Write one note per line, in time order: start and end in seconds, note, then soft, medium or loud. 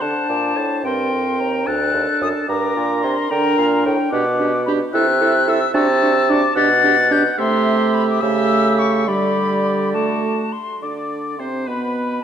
0.00 0.14 D3 medium
0.00 0.87 D4 medium
0.00 0.85 C5 medium
0.00 0.28 F#5 medium
0.00 0.84 A5 loud
0.29 0.56 A#2 medium
0.29 0.59 D5 medium
0.56 0.86 A2 medium
0.56 0.84 A5 medium
0.84 1.13 G2 medium
0.84 1.68 C4 medium
0.84 1.68 A#4 medium
0.84 1.68 G5 medium
0.84 1.42 C6 medium
1.12 1.41 F2 medium
1.40 1.66 D#2 medium
1.40 1.68 A#5 medium
1.67 1.93 D2 medium
1.67 2.49 D4 medium
1.67 2.49 A4 medium
1.67 2.49 A5 medium
1.67 2.21 F#6 loud
1.94 2.06 D#2 medium
2.21 2.34 F#2 medium
2.21 2.28 D#6 loud
2.48 2.76 G2 medium
2.48 3.30 D4 medium
2.48 3.30 A#4 medium
2.48 3.30 A#5 medium
2.48 3.04 D6 loud
2.76 3.03 A#2 medium
3.03 3.16 C3 medium
3.03 3.32 C6 loud
3.30 3.57 D3 medium
3.30 4.11 D4 medium
3.30 3.96 A#4 loud
3.30 3.57 G5 medium
3.30 3.85 A#5 loud
3.58 3.85 A#2 loud
3.58 3.85 F5 medium
3.85 3.98 A2 medium
3.85 4.12 G5 medium
4.11 4.85 B2 loud
4.11 4.24 D4 medium
4.11 4.25 G4 medium
4.11 4.66 F#5 loud
4.11 4.62 D6 loud
4.40 4.52 D4 medium
4.40 4.53 G4 medium
4.66 4.80 D4 medium
4.66 4.79 G4 medium
4.66 4.72 B5 loud
4.93 5.65 C3 loud
4.93 5.06 E4 medium
4.93 5.07 A4 loud
4.93 5.71 E5 loud
4.93 5.51 F#6 loud
5.21 5.33 E4 medium
5.21 5.33 A4 loud
5.48 5.60 E4 medium
5.48 5.60 A4 loud
5.48 5.74 E6 loud
5.74 6.47 C3 loud
5.74 5.87 D4 loud
5.74 5.87 F#4 loud
5.74 6.55 A5 loud
5.74 6.31 E6 loud
6.02 6.14 D4 medium
6.02 6.14 F#4 medium
6.30 6.42 D4 loud
6.30 6.42 F#4 medium
6.30 6.56 D6 loud
6.56 7.29 B2 loud
6.56 6.69 D4 medium
6.56 6.69 G4 loud
6.56 7.40 F#5 loud
6.56 7.14 A6 loud
6.84 6.97 D4 medium
6.84 6.97 G4 loud
7.11 7.24 D4 loud
7.11 7.23 G4 medium
7.11 7.39 G6 loud
7.38 8.19 C3 loud
7.38 8.19 A3 medium
7.38 8.18 G4 loud
7.38 8.22 E5 loud
7.38 7.96 C6 loud
7.94 8.09 B5 loud
8.10 8.22 D6 loud
8.21 9.09 C#3 loud
8.21 9.09 A3 loud
8.21 9.06 G4 loud
8.21 9.06 E5 loud
8.21 8.80 E6 loud
8.79 9.09 C#6 loud
9.07 10.53 D3 medium
9.07 9.96 G3 medium
9.07 9.96 G4 medium
9.07 10.36 D5 medium
9.07 9.93 B5 loud
9.94 10.54 A3 medium
9.94 10.54 F#4 medium
9.94 10.54 A5 medium
10.53 10.84 C6 loud
10.82 11.41 D3 medium
10.82 11.36 D4 medium
10.82 11.41 D5 medium
10.82 11.36 D5 medium
10.82 11.38 D6 medium
11.38 11.67 C3 medium
11.38 11.68 C4 medium
11.38 11.69 C5 medium
11.38 11.70 C5 medium
11.38 11.45 C6 medium
11.66 12.22 B2 medium
11.66 12.22 B3 medium
11.66 12.24 B4 medium
11.66 12.22 B4 medium
11.66 12.21 B5 medium